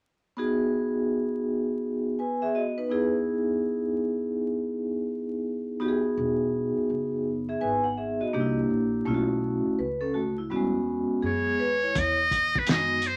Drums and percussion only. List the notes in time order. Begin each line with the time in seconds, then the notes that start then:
11.95 kick, closed hi-hat
12.31 kick, closed hi-hat
12.55 kick
12.67 snare, closed hi-hat
13.02 closed hi-hat